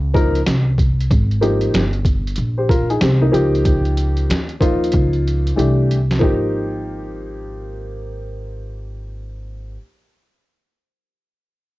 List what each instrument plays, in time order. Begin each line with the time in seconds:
Already playing: upright bass C#2
0.13 upright piano F3 A#3 D#4 A#4, kick, closed hi-hat
0.35 closed hi-hat
0.46 upright bass C2, snare, closed hi-hat
0.78 kick, closed hi-hat
1.00 closed hi-hat
1.10 upright bass G#1, kick, closed hi-hat
1.31 closed hi-hat
1.41 upright piano F3 A#3 D#4 G4, closed hi-hat
1.61 closed hi-hat
1.74 upright bass G1, snare, closed hi-hat
1.93 closed hi-hat
2.05 kick, closed hi-hat
2.27 closed hi-hat
2.36 upright bass A#1, closed hi-hat
2.58 upright piano G4 C5
2.69 upright piano F4 A#4, kick, closed hi-hat
2.90 upright piano D#4 G#4, closed hi-hat
3.01 upright bass C2, upright piano C4 G4, snare, closed hi-hat
3.22 upright piano A#3 D#4
3.32 upright bass C#2, upright piano F3 A#3 D#4 G4, closed hi-hat
3.55 closed hi-hat
3.65 kick, closed hi-hat
3.86 closed hi-hat
3.97 closed hi-hat
4.17 closed hi-hat
4.30 upright bass D#2, snare, closed hi-hat
4.49 closed hi-hat
4.60 upright piano F3 A#3 D#4 F4, kick, closed hi-hat
4.84 closed hi-hat
4.92 upright bass C#2, kick, closed hi-hat
5.13 closed hi-hat
5.28 closed hi-hat
5.47 closed hi-hat
5.56 upright bass C2, upright piano E3 A3 D4 G4, closed hi-hat
5.91 closed hi-hat
6.11 snare, closed hi-hat
6.19 upright bass G#1, upright piano F3 A#3 D#4, kick
6.23 upright piano G4